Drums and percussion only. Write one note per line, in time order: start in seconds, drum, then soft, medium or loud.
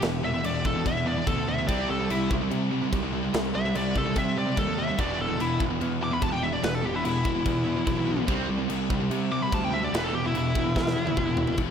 0.02 snare loud
0.02 crash medium
0.44 crash medium
0.65 kick medium
0.86 kick medium
0.86 crash medium
1.27 kick loud
1.27 crash medium
1.69 kick loud
1.69 crash medium
2.10 crash medium
2.31 kick loud
2.51 crash medium
2.93 kick medium
2.93 crash medium
3.34 snare loud
3.34 crash medium
3.75 crash medium
3.96 kick medium
4.16 kick medium
4.16 crash medium
4.57 kick loud
4.57 crash medium
4.99 kick loud
4.99 crash medium
5.40 crash medium
5.60 kick medium
5.81 crash medium
6.22 kick loud
6.22 crash medium
6.63 snare loud
6.63 crash medium
7.05 crash medium
7.25 kick medium
7.46 kick loud
7.46 crash medium
7.87 kick loud
7.87 crash medium
8.28 kick loud
8.28 crash medium
8.70 crash medium
8.90 kick medium
9.11 crash medium
9.52 kick loud
9.52 crash medium
9.94 snare loud
9.94 crash medium
10.35 crash medium
10.55 kick loud
10.76 kick medium
10.76 snare medium
10.87 snare medium
11.07 high tom medium
11.17 kick medium
11.17 mid tom loud
11.37 floor tom loud
11.47 floor tom loud
11.57 kick loud
11.57 crash medium